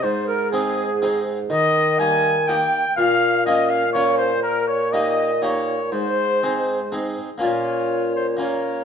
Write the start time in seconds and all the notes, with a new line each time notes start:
0.02 G#2 C5
0.27 A#4
0.51 C4 D#4 G#4
1.02 C4 D#4 G#4
1.50 D#3 D#5
1.99 G3 A#3 D#4 G#5
2.47 A#3 D#4 G4 G5
2.96 A#2 F5
3.46 A#3 C#4 F4 D#5
3.69 F5
3.93 A#3 C#4 F4 C#5
4.17 C5
4.43 A#4
4.67 C#5
4.92 A#3 D#4 G4 D#5
5.42 A#3 D#4 G4 C#5
5.92 G#2 C5
6.43 C4 D#4 G#4
6.92 C4 D#4 G#4
7.38 A#2 A#3 C#4 F4 D5
7.42 A#2
7.46 C#5
8.16 C5
8.37 A#3 C#4 F4 A#4 C#5